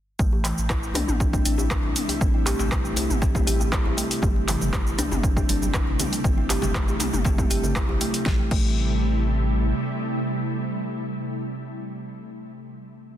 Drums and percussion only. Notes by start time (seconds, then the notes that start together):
0.19 kick, shaker
0.32 djembe tone
0.45 clap, open hi-hat, shaker
0.58 shaker
0.69 kick, cross-stick, clap, djembe tone, shaker
0.83 shaker
0.94 cross-stick, open hi-hat, mid tom, djembe tone, djembe bass, shaker
1.08 mid tom, shaker
1.20 kick, djembe tone, shaker
1.33 kick, shaker
1.45 open hi-hat, shaker
1.58 djembe tone, shaker
1.71 kick, cross-stick, clap, shaker
1.83 djembe tone
1.96 open hi-hat, mid tom, shaker
2.08 open hi-hat, djembe tone, shaker
2.21 kick, shaker
2.46 clap, open hi-hat, djembe tone, shaker
2.59 djembe slap, shaker
2.72 kick, cross-stick, clap, djembe tone, shaker
2.85 shaker
2.96 open hi-hat, djembe slap, djembe tone, djembe bass, shaker
3.10 mid tom, shaker
3.22 kick, djembe slap, shaker
3.35 kick, mid tom, djembe tone, shaker
3.47 open hi-hat, shaker
3.60 djembe tone, shaker
3.72 kick, cross-stick, clap, shaker
3.85 djembe tone, djembe bass
3.98 open hi-hat, shaker
4.11 open hi-hat, shaker
4.22 kick, djembe tone, high conga, shaker
4.36 muted conga
4.48 clap, open hi-hat, djembe tone, shaker
4.61 high conga, low conga, shaker
4.72 kick, cross-stick, clap, muted conga, djembe tone, shaker
4.87 shaker
4.98 cross-stick, open hi-hat, mid tom, djembe bass, shaker
5.12 mid tom, muted conga, djembe tone, shaker
5.23 kick, shaker
5.37 kick, djembe tone, shaker
5.49 open hi-hat, muted conga, high conga, shaker
5.62 high conga, djembe tone, shaker
5.73 kick, cross-stick, clap, low conga, shaker
5.87 muted conga
5.99 open hi-hat, mid tom, djembe tone, low conga, shaker
6.13 open hi-hat, shaker
6.24 kick, high conga, djembe tone, shaker
6.38 muted conga
6.50 clap, open hi-hat, djembe tone, shaker
6.62 djembe slap, high conga, low conga, shaker
6.74 kick, cross-stick, clap, muted conga, shaker
6.88 djembe tone, shaker
6.99 open hi-hat, mid tom, djembe slap, djembe bass, shaker
7.13 mid tom, muted conga, djembe tone, shaker
7.25 kick, djembe slap, low conga, shaker
7.38 kick, mid tom, djembe tone, shaker
7.50 open hi-hat, muted conga, shaker
7.63 low conga, shaker
7.76 kick, cross-stick, clap, djembe tone, high conga, shaker
7.89 muted conga, djembe bass
8.01 open hi-hat, djembe tone, high conga, shaker
8.14 open hi-hat, shaker
8.26 kick, snare
8.51 kick, crash